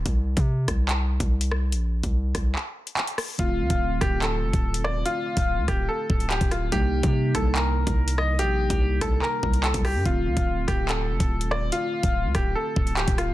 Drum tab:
HH |x--x--x-x--x-x--|x--x--x----xxxo-|x--x--x-x--x-x--|x--x--x----xxxx-|
CP |--------x-------|--------x---x---|--------x-------|------------x---|
SD |------r-------r-|------r-------r-|------r-------r-|------r-------r-|
BD |o--o--o----o----|---o--o---------|o--o--o----o----|---o--o---o--o--|

HH |x--x--x-x--x-x--|x--x--x----xxxo-|x--x--x-x--x-x--|x--x--x----xxxx-|
CP |--------x-------|--------x---x---|--------x-------|------------x---|
SD |------r-------r-|------r-------r-|------r-------r-|------r-------r-|
BD |o--o--o----o----|---o--o---o--o--|o--o--o----o----|---o--o---o--o--|